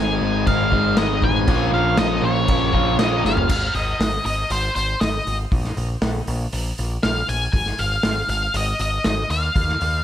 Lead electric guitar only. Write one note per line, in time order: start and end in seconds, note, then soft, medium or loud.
0.00 0.47 G#5 loud
0.47 0.99 F5 loud
0.98 1.24 D#5 loud
1.24 1.70 G#5 medium
1.74 1.99 F5 medium
1.98 2.24 D#5 medium
2.25 2.96 C#5 medium
2.99 3.23 D#5 loud
3.26 3.49 F5 loud
3.50 3.75 F5 loud
3.76 4.25 D#5 medium
4.26 4.49 D#5 medium
4.52 4.74 C5 medium
4.75 4.99 C5 medium
5.00 5.36 D#5 medium
7.03 7.29 F5 medium
7.29 7.52 G#5 loud
7.53 7.80 G#5 loud
7.79 8.28 F5 medium
8.30 8.56 F5 medium
8.57 8.80 D#5 medium
8.82 9.05 D#5 medium
9.06 9.31 D#5 loud
9.31 10.04 F5 medium